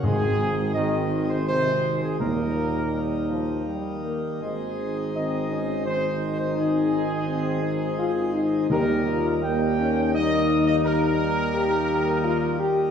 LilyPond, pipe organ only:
\new Staff \with { instrumentName = "Pipe organ" } { \time 3/4 \key aes \major \tempo 4 = 84 << { <ees ees'>2.~ | <ees ees'>2. | <ees ees'>2.~ | <ees ees'>2. |
<ees ees'>2.~ | <ees ees'>2. | } \\ { <aes c'>2. | <g bes>2. | <aes c''>2.~ | <aes c''>2. |
<g bes>2.~ | <g bes>2. | } >> }